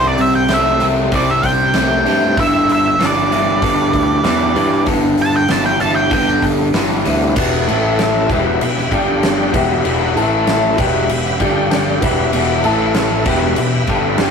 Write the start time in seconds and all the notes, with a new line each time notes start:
Already playing: C2 C3 E3 G3 C4 E4 G4 C5
0.07 D5
0.18 C2 E3 E5, open hi-hat
0.23 G3 C4 E4
0.35 G5
0.49 C2 C3 A3, snare, open hi-hat
0.53 E3 G3 C4 E4 E5
0.67 G3 C4 E4
0.80 C2 C3 E3 G3 A3 C4 E4, open hi-hat
0.98 G3 C4 E4
1.12 C2 C3 G3 E4 G4 C5 D5, kick, open hi-hat
1.28 E5, snare
1.43 C2 E3 E4 G5, kick, open hi-hat
1.74 C2 C3 E3 G3 A3 C4, snare, open hi-hat
1.78 E4
2.06 G2 C3 E3 G3 A3 C4 E4, open hi-hat
2.23 G3 C4 E4
2.37 G1 G2 D3 E3 G3 B3 E4 G4 B4 E5, kick, open hi-hat
2.68 G1 E3 G3 B3 E4, open hi-hat
2.73 E5
2.99 G1 G2 D3 E3 G3 B3 E4, snare, open hi-hat
3.06 D5
3.16 E3 G3 B3 E4
3.31 G1 G2 E3 G3 B3 E4, open hi-hat
3.46 E3 G3 B3 E4
3.62 G1 G2 D3 E4 G4 B4, kick, open hi-hat
3.93 D2 E3, kick, open hi-hat
4.24 E2 G2 D3 E3 G3 B3 E4, snare, open hi-hat
4.55 G2 E3 G3 B3 E4, open hi-hat
4.72 E3 G3 B3 E4
4.85 G1 G2 D3 E3 B3 E4 G4 B4, kick, open hi-hat
4.90 G3 B3 E4
5.18 G1 E3 G3 B3 E4, open hi-hat
5.22 A5
5.36 G5
5.48 G1 G2 D3 E3 G3 A5, snare, open hi-hat
5.53 B3 E4
5.65 E3 G3 B3 E4 G5
5.80 G1 G2 E3 G3 B3 E4 A5, open hi-hat
5.95 G5
6.00 E3
6.10 G1 G2 D3 E4 G4 B4 G5, kick, open hi-hat
6.28 snare
6.42 G1 E3 G3 B3, kick, open hi-hat
6.47 E4
6.74 G1 G2 D3 E3 G3 B3 E4, snare, open hi-hat
7.04 D2 G2 E3 G3 A3 B3, open hi-hat
7.09 B3 C4 E4
7.16 D4 E4
7.20 G3 B3 E4 F4 G4
7.25 E3 A4 B4
7.32 E2 B3 C5 D5
7.36 E1 B2 E3 E4 G4 B4, kick, crash
7.66 A1 A2 E3 A3 E4 A4 E5, crash
7.71 E4 A4 E5
7.99 snare, crash
8.29 E1 E2 B2 E3 E4 G4 B4 E5, kick, crash
8.34 G4
8.61 E1 E2 B2, crash
8.78 snare
8.91 G1 G2 D3 G3 D4 G4 D5 G5, kick, crash
9.23 snare, crash
9.53 E1 E2 B2 E3 G4 B4 E5 G5, kick, crash
9.85 E1 E2 B2 E3, crash
10.14 A1 A2 E3 A3 E4 A4 E5 A5, crash
10.19 E4 E5
10.47 snare, crash
10.77 E1 E2 B2 E3 G4 B4 D5 E5 G5, kick, crash
10.81 E5
11.09 E1 E2 B2 E5, crash
11.24 F#5, snare
11.40 G1 G2 D3 G3 D4 G4 D5 G5, kick, crash
11.70 A5, snare, crash
12.00 E1 E2 B2 E3 G4 B4 E5 G5 B5, kick, crash
12.04 B4 E5
12.32 E1 E2 B2 E3, crash
12.63 A1 A2 E3 A3 E4 A4 E5 A5, crash
12.94 snare, crash
13.25 E1 E2 B2 E3 G4 B4 E5 G5, kick, crash
13.56 E1 E2 B2, crash
13.87 G1 G2 D3 G3, kick, crash
14.18 G1 G2 D3 G3 D4 G4 D5 G5, snare, crash
14.22 G4 G5